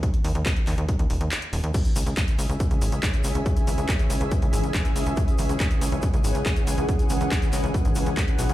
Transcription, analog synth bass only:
\new Staff \with { instrumentName = "Analog synth bass" } { \clef bass \time 4/4 \key cis \minor \tempo 4 = 140 r8 dis,16 dis,16 r8 dis,16 dis,16 r16 dis,16 dis,,16 dis,16 r8 dis,,16 dis,16 | r8 cis,16 cis,16 r8 cis,16 cis,16 r16 cis,16 gis,,16 cis,16 r8 cis,16 cis,16 | r8 cis,16 cis,16 r8 cis,16 cis,16 r16 cis,16 gis,,16 cis,16 r8 cis,16 cis,16 | r8 cis,16 cis,16 r8 cis,16 cis,16 r16 cis,16 gis,,16 cis,16 r8 cis,16 cis,16 |
r8 cis,16 cis,16 r8 cis,16 cis,16 r16 gis,,16 cis,16 cis,16 r8 b,,16 cis,16 | }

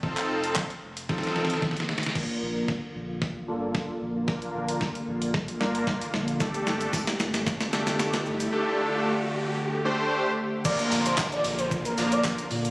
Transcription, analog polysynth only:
\new Staff \with { instrumentName = "Analog polysynth" } { \time 4/4 \key bes \major \tempo 4 = 113 <c' ees' f' a'>4 r4 <c' ees' f' a'>4 r4 | <bes d' f' bes'>4 r4. <bes d' f' a'>4 r8 | <bes d' f' bes'>4 r4. <bes d' f' bes'>4 r8 | <a d' g' a'>4 r4. <a d' g' a'>4 r8 |
<a d' g' a'>4 r4. <a d' g' c''>4 r8 | <f bes d' f' bes'>4 r4. <f bes d' f' bes'>4 r8 | }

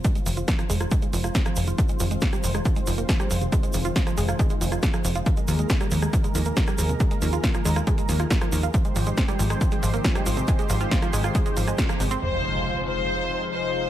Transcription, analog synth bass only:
\new Staff \with { instrumentName = "Analog synth bass" } { \clef bass \time 4/4 \key f \minor \tempo 4 = 138 r8 f,,8 r8 f,,8 r8 f,,8 r8 f,,8 | r8 f,,8 r8 f,,8 r8 f,,8 r8 f,,8 | r8 f,,8 r8 f,,8 r8 f,,8 r8 f,,8 | r8 ees,8 r8 ees,8 r8 ees,8 r8 ees,8 |
r8 ees,8 r8 ees,8 r8 ees,8 r8 ees,8 | r8 aes,,8 r8 aes,,8 r8 aes,,8 r8 aes,,8 | r8 aes,,8 r8 aes,,8 r8 aes,,8 r8 aes,,8 | f,,1 | }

